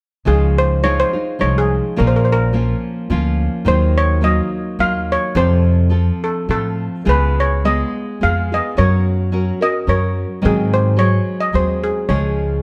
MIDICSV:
0, 0, Header, 1, 4, 480
1, 0, Start_track
1, 0, Key_signature, -5, "major"
1, 0, Tempo, 571429
1, 225, Time_signature, 3, 2, 24, 8
1, 2141, Tempo, 560224
1, 5021, Tempo, 575264
1, 6941, Tempo, 554017
1, 10761, End_track
2, 0, Start_track
2, 0, Title_t, "Steel pan"
2, 0, Program_c, 0, 114
2, 231, Note_on_c, 0, 68, 59
2, 491, Note_on_c, 0, 72, 74
2, 496, Note_off_c, 0, 68, 0
2, 703, Note_on_c, 0, 73, 75
2, 720, Note_off_c, 0, 72, 0
2, 763, Note_off_c, 0, 73, 0
2, 838, Note_on_c, 0, 72, 82
2, 1164, Note_off_c, 0, 72, 0
2, 1184, Note_on_c, 0, 73, 70
2, 1318, Note_off_c, 0, 73, 0
2, 1327, Note_on_c, 0, 68, 70
2, 1648, Note_off_c, 0, 68, 0
2, 1668, Note_on_c, 0, 70, 55
2, 1740, Note_off_c, 0, 70, 0
2, 1742, Note_on_c, 0, 72, 53
2, 1812, Note_off_c, 0, 72, 0
2, 1817, Note_on_c, 0, 70, 45
2, 1886, Note_off_c, 0, 70, 0
2, 1888, Note_on_c, 0, 72, 44
2, 1953, Note_off_c, 0, 72, 0
2, 1953, Note_on_c, 0, 70, 67
2, 2130, Note_off_c, 0, 70, 0
2, 3110, Note_on_c, 0, 72, 82
2, 3364, Note_on_c, 0, 73, 79
2, 3365, Note_off_c, 0, 72, 0
2, 3567, Note_off_c, 0, 73, 0
2, 3590, Note_on_c, 0, 75, 73
2, 4073, Note_on_c, 0, 77, 75
2, 4080, Note_off_c, 0, 75, 0
2, 4329, Note_off_c, 0, 77, 0
2, 4345, Note_on_c, 0, 73, 74
2, 4559, Note_off_c, 0, 73, 0
2, 4559, Note_on_c, 0, 72, 73
2, 5295, Note_on_c, 0, 69, 59
2, 5308, Note_off_c, 0, 72, 0
2, 5509, Note_off_c, 0, 69, 0
2, 5519, Note_on_c, 0, 69, 67
2, 5855, Note_off_c, 0, 69, 0
2, 6006, Note_on_c, 0, 71, 72
2, 6116, Note_off_c, 0, 71, 0
2, 6265, Note_on_c, 0, 73, 66
2, 6476, Note_on_c, 0, 75, 71
2, 6483, Note_off_c, 0, 73, 0
2, 6915, Note_off_c, 0, 75, 0
2, 6959, Note_on_c, 0, 77, 65
2, 7193, Note_off_c, 0, 77, 0
2, 7226, Note_on_c, 0, 75, 63
2, 7424, Note_off_c, 0, 75, 0
2, 7436, Note_on_c, 0, 73, 71
2, 8165, Note_on_c, 0, 75, 77
2, 8188, Note_off_c, 0, 73, 0
2, 8265, Note_off_c, 0, 75, 0
2, 8398, Note_on_c, 0, 73, 65
2, 8733, Note_off_c, 0, 73, 0
2, 8886, Note_on_c, 0, 68, 65
2, 9129, Note_on_c, 0, 72, 66
2, 9136, Note_off_c, 0, 68, 0
2, 9347, Note_on_c, 0, 73, 70
2, 9353, Note_off_c, 0, 72, 0
2, 9708, Note_on_c, 0, 75, 63
2, 9721, Note_off_c, 0, 73, 0
2, 9811, Note_off_c, 0, 75, 0
2, 9837, Note_on_c, 0, 72, 67
2, 10081, Note_on_c, 0, 68, 59
2, 10090, Note_off_c, 0, 72, 0
2, 10300, Note_on_c, 0, 73, 54
2, 10308, Note_off_c, 0, 68, 0
2, 10761, Note_off_c, 0, 73, 0
2, 10761, End_track
3, 0, Start_track
3, 0, Title_t, "Nylon-string guitar"
3, 0, Program_c, 1, 24
3, 212, Note_on_c, 1, 49, 54
3, 219, Note_on_c, 1, 53, 58
3, 220, Note_on_c, 1, 56, 59
3, 223, Note_on_c, 1, 63, 61
3, 223, Note_on_c, 1, 65, 60
3, 690, Note_off_c, 1, 56, 0
3, 693, Note_off_c, 1, 53, 0
3, 693, Note_off_c, 1, 63, 0
3, 697, Note_on_c, 1, 53, 44
3, 700, Note_on_c, 1, 56, 50
3, 703, Note_on_c, 1, 63, 52
3, 704, Note_off_c, 1, 49, 0
3, 706, Note_off_c, 1, 65, 0
3, 709, Note_on_c, 1, 65, 58
3, 941, Note_off_c, 1, 65, 0
3, 949, Note_off_c, 1, 63, 0
3, 951, Note_on_c, 1, 65, 35
3, 954, Note_off_c, 1, 56, 0
3, 959, Note_on_c, 1, 63, 35
3, 960, Note_off_c, 1, 53, 0
3, 965, Note_on_c, 1, 56, 34
3, 1162, Note_off_c, 1, 63, 0
3, 1163, Note_off_c, 1, 56, 0
3, 1167, Note_on_c, 1, 53, 50
3, 1171, Note_off_c, 1, 65, 0
3, 1172, Note_on_c, 1, 63, 50
3, 1174, Note_on_c, 1, 56, 47
3, 1181, Note_on_c, 1, 65, 51
3, 1647, Note_off_c, 1, 53, 0
3, 1650, Note_on_c, 1, 53, 58
3, 1651, Note_off_c, 1, 56, 0
3, 1652, Note_off_c, 1, 65, 0
3, 1654, Note_on_c, 1, 46, 55
3, 1654, Note_on_c, 1, 58, 69
3, 1656, Note_on_c, 1, 65, 69
3, 1657, Note_off_c, 1, 63, 0
3, 1660, Note_on_c, 1, 61, 66
3, 2121, Note_off_c, 1, 53, 0
3, 2123, Note_off_c, 1, 61, 0
3, 2124, Note_on_c, 1, 53, 52
3, 2127, Note_off_c, 1, 58, 0
3, 2131, Note_on_c, 1, 58, 54
3, 2132, Note_off_c, 1, 65, 0
3, 2133, Note_on_c, 1, 61, 51
3, 2135, Note_on_c, 1, 65, 57
3, 2136, Note_off_c, 1, 46, 0
3, 2607, Note_off_c, 1, 53, 0
3, 2611, Note_on_c, 1, 53, 54
3, 2613, Note_off_c, 1, 58, 0
3, 2613, Note_off_c, 1, 61, 0
3, 2616, Note_on_c, 1, 58, 61
3, 2623, Note_on_c, 1, 61, 61
3, 2624, Note_off_c, 1, 65, 0
3, 2627, Note_on_c, 1, 65, 64
3, 3082, Note_on_c, 1, 51, 60
3, 3083, Note_off_c, 1, 58, 0
3, 3087, Note_off_c, 1, 53, 0
3, 3090, Note_on_c, 1, 54, 59
3, 3094, Note_on_c, 1, 58, 66
3, 3095, Note_off_c, 1, 61, 0
3, 3096, Note_off_c, 1, 65, 0
3, 3098, Note_on_c, 1, 63, 69
3, 3100, Note_on_c, 1, 65, 68
3, 3554, Note_off_c, 1, 54, 0
3, 3558, Note_off_c, 1, 58, 0
3, 3565, Note_on_c, 1, 54, 43
3, 3568, Note_off_c, 1, 63, 0
3, 3569, Note_off_c, 1, 51, 0
3, 3569, Note_on_c, 1, 58, 55
3, 3573, Note_off_c, 1, 65, 0
3, 3577, Note_on_c, 1, 65, 51
3, 3579, Note_on_c, 1, 63, 59
3, 4049, Note_off_c, 1, 54, 0
3, 4049, Note_off_c, 1, 58, 0
3, 4058, Note_off_c, 1, 63, 0
3, 4059, Note_on_c, 1, 58, 45
3, 4060, Note_on_c, 1, 54, 52
3, 4069, Note_on_c, 1, 63, 47
3, 4071, Note_off_c, 1, 65, 0
3, 4075, Note_on_c, 1, 65, 48
3, 4538, Note_off_c, 1, 54, 0
3, 4538, Note_off_c, 1, 58, 0
3, 4541, Note_on_c, 1, 41, 58
3, 4543, Note_off_c, 1, 63, 0
3, 4544, Note_on_c, 1, 53, 57
3, 4546, Note_off_c, 1, 65, 0
3, 4546, Note_on_c, 1, 48, 59
3, 4550, Note_on_c, 1, 60, 65
3, 4550, Note_on_c, 1, 69, 66
3, 4552, Note_on_c, 1, 65, 60
3, 5006, Note_off_c, 1, 53, 0
3, 5006, Note_off_c, 1, 60, 0
3, 5010, Note_on_c, 1, 53, 44
3, 5013, Note_off_c, 1, 69, 0
3, 5016, Note_on_c, 1, 60, 52
3, 5018, Note_off_c, 1, 65, 0
3, 5022, Note_off_c, 1, 41, 0
3, 5022, Note_on_c, 1, 65, 48
3, 5023, Note_on_c, 1, 69, 48
3, 5025, Note_off_c, 1, 48, 0
3, 5493, Note_off_c, 1, 60, 0
3, 5498, Note_off_c, 1, 53, 0
3, 5502, Note_off_c, 1, 69, 0
3, 5502, Note_on_c, 1, 53, 49
3, 5503, Note_on_c, 1, 60, 37
3, 5506, Note_off_c, 1, 65, 0
3, 5510, Note_on_c, 1, 65, 47
3, 5513, Note_on_c, 1, 69, 44
3, 5970, Note_off_c, 1, 65, 0
3, 5973, Note_off_c, 1, 53, 0
3, 5973, Note_on_c, 1, 49, 54
3, 5976, Note_off_c, 1, 60, 0
3, 5976, Note_on_c, 1, 56, 57
3, 5980, Note_on_c, 1, 59, 58
3, 5980, Note_on_c, 1, 65, 65
3, 5981, Note_off_c, 1, 69, 0
3, 5985, Note_on_c, 1, 68, 62
3, 6459, Note_off_c, 1, 49, 0
3, 6461, Note_off_c, 1, 56, 0
3, 6462, Note_off_c, 1, 59, 0
3, 6463, Note_off_c, 1, 65, 0
3, 6465, Note_off_c, 1, 68, 0
3, 6471, Note_on_c, 1, 56, 50
3, 6472, Note_on_c, 1, 59, 52
3, 6475, Note_on_c, 1, 65, 50
3, 6484, Note_on_c, 1, 68, 60
3, 6929, Note_off_c, 1, 56, 0
3, 6937, Note_off_c, 1, 59, 0
3, 6939, Note_on_c, 1, 56, 49
3, 6944, Note_off_c, 1, 65, 0
3, 6947, Note_off_c, 1, 68, 0
3, 6948, Note_on_c, 1, 59, 48
3, 6955, Note_on_c, 1, 65, 48
3, 6958, Note_on_c, 1, 68, 47
3, 7199, Note_off_c, 1, 68, 0
3, 7200, Note_off_c, 1, 56, 0
3, 7201, Note_off_c, 1, 65, 0
3, 7205, Note_off_c, 1, 59, 0
3, 7209, Note_on_c, 1, 68, 35
3, 7211, Note_on_c, 1, 65, 33
3, 7225, Note_on_c, 1, 59, 31
3, 7422, Note_off_c, 1, 59, 0
3, 7423, Note_on_c, 1, 54, 57
3, 7426, Note_on_c, 1, 61, 60
3, 7430, Note_off_c, 1, 65, 0
3, 7431, Note_off_c, 1, 68, 0
3, 7433, Note_on_c, 1, 66, 61
3, 7437, Note_on_c, 1, 70, 61
3, 7895, Note_off_c, 1, 61, 0
3, 7897, Note_off_c, 1, 54, 0
3, 7901, Note_on_c, 1, 54, 48
3, 7904, Note_off_c, 1, 70, 0
3, 7905, Note_on_c, 1, 61, 52
3, 7907, Note_off_c, 1, 66, 0
3, 7911, Note_on_c, 1, 66, 48
3, 7914, Note_on_c, 1, 70, 56
3, 8142, Note_off_c, 1, 70, 0
3, 8152, Note_off_c, 1, 66, 0
3, 8152, Note_on_c, 1, 70, 40
3, 8156, Note_off_c, 1, 61, 0
3, 8159, Note_off_c, 1, 54, 0
3, 8162, Note_on_c, 1, 66, 41
3, 8167, Note_on_c, 1, 61, 33
3, 8368, Note_off_c, 1, 61, 0
3, 8370, Note_off_c, 1, 66, 0
3, 8378, Note_on_c, 1, 54, 41
3, 8379, Note_on_c, 1, 61, 49
3, 8380, Note_off_c, 1, 70, 0
3, 8380, Note_on_c, 1, 66, 48
3, 8389, Note_on_c, 1, 70, 55
3, 8841, Note_off_c, 1, 54, 0
3, 8851, Note_on_c, 1, 54, 54
3, 8852, Note_on_c, 1, 44, 66
3, 8853, Note_off_c, 1, 61, 0
3, 8853, Note_on_c, 1, 51, 63
3, 8854, Note_off_c, 1, 66, 0
3, 8856, Note_off_c, 1, 70, 0
3, 8856, Note_on_c, 1, 56, 58
3, 8857, Note_on_c, 1, 60, 66
3, 8860, Note_on_c, 1, 68, 59
3, 9317, Note_off_c, 1, 54, 0
3, 9327, Note_on_c, 1, 54, 49
3, 9331, Note_off_c, 1, 56, 0
3, 9335, Note_off_c, 1, 44, 0
3, 9335, Note_off_c, 1, 51, 0
3, 9335, Note_on_c, 1, 56, 46
3, 9337, Note_off_c, 1, 60, 0
3, 9342, Note_off_c, 1, 68, 0
3, 9345, Note_on_c, 1, 68, 54
3, 9801, Note_off_c, 1, 54, 0
3, 9812, Note_on_c, 1, 54, 43
3, 9814, Note_off_c, 1, 56, 0
3, 9818, Note_on_c, 1, 56, 54
3, 9820, Note_on_c, 1, 60, 49
3, 9823, Note_off_c, 1, 68, 0
3, 9827, Note_on_c, 1, 68, 53
3, 10294, Note_off_c, 1, 54, 0
3, 10298, Note_off_c, 1, 60, 0
3, 10298, Note_on_c, 1, 53, 60
3, 10299, Note_on_c, 1, 49, 56
3, 10302, Note_off_c, 1, 56, 0
3, 10305, Note_off_c, 1, 68, 0
3, 10305, Note_on_c, 1, 56, 64
3, 10305, Note_on_c, 1, 65, 60
3, 10309, Note_on_c, 1, 68, 66
3, 10760, Note_off_c, 1, 53, 0
3, 10761, Note_off_c, 1, 49, 0
3, 10761, Note_off_c, 1, 56, 0
3, 10761, Note_off_c, 1, 65, 0
3, 10761, Note_off_c, 1, 68, 0
3, 10761, End_track
4, 0, Start_track
4, 0, Title_t, "Upright bass"
4, 0, Program_c, 2, 32
4, 227, Note_on_c, 2, 37, 76
4, 853, Note_off_c, 2, 37, 0
4, 1190, Note_on_c, 2, 36, 63
4, 1500, Note_off_c, 2, 36, 0
4, 1676, Note_on_c, 2, 34, 87
4, 2289, Note_off_c, 2, 34, 0
4, 2614, Note_on_c, 2, 38, 76
4, 2925, Note_off_c, 2, 38, 0
4, 3092, Note_on_c, 2, 39, 89
4, 3719, Note_off_c, 2, 39, 0
4, 4062, Note_on_c, 2, 39, 63
4, 4372, Note_off_c, 2, 39, 0
4, 4541, Note_on_c, 2, 41, 89
4, 5170, Note_off_c, 2, 41, 0
4, 5502, Note_on_c, 2, 45, 58
4, 5815, Note_off_c, 2, 45, 0
4, 5986, Note_on_c, 2, 37, 79
4, 6608, Note_off_c, 2, 37, 0
4, 6959, Note_on_c, 2, 41, 55
4, 7269, Note_off_c, 2, 41, 0
4, 7436, Note_on_c, 2, 42, 73
4, 8056, Note_off_c, 2, 42, 0
4, 8385, Note_on_c, 2, 42, 64
4, 8696, Note_off_c, 2, 42, 0
4, 8880, Note_on_c, 2, 44, 84
4, 9495, Note_off_c, 2, 44, 0
4, 9826, Note_on_c, 2, 39, 70
4, 10135, Note_off_c, 2, 39, 0
4, 10300, Note_on_c, 2, 37, 82
4, 10761, Note_off_c, 2, 37, 0
4, 10761, End_track
0, 0, End_of_file